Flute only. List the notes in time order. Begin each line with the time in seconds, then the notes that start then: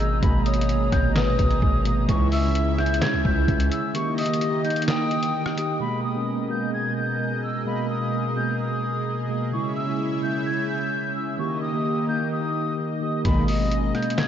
0.00 E6
0.23 B5
0.46 D#6
0.92 G6
1.16 D#6
1.86 D#6
2.09 C#6
2.32 E6
2.78 G6
3.02 G#6
3.25 G6
3.71 E6
3.95 C#6
4.18 D#6
4.64 G6
4.88 D#6
5.57 D#6
5.81 B5
6.04 D#6
6.50 G6
6.74 G#6
6.97 G6
7.44 E6
7.67 B5
7.90 D#6
8.37 G6
8.60 D#6
9.30 D#6
9.53 C#6
9.76 E6
10.23 G6
10.46 G#6
10.69 G6
11.16 E6
11.39 C#6
11.62 D#6
12.09 G6
12.32 D#6
13.02 D#6
13.25 B5
13.48 D#6
13.95 G6
14.18 G#6